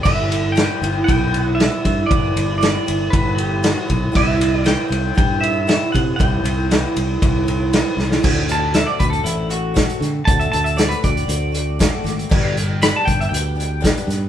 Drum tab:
CC |x---------------|----------------|x---------------|----------------|
RD |--x-x-x-x-x-x-x-|x-x-x-x-x-x-x-x-|--x-x-x-x-x-x-x-|x-x-x-x-x-x-x---|
HH |----------------|----------------|----------------|----------------|
SD |----o-------o---|----o-------o---|----o-------o---|----o-------o-oo|
BD |o-------o-----o-|o-------o-----o-|o-------o-----o-|o-------o-------|

CC |x---------------|----------------|x---------------|
RD |----------------|----------------|----------------|
HH |--x-x-xxx-x-xxx-|xxxxxxxxx-x-x-xx|--x-x-xxx-x-xxx-|
SD |----o-------o-o-|----o-------o-o-|----o-------o-o-|
BD |o-----o-----o---|o-----o-----o---|o-----o-----o---|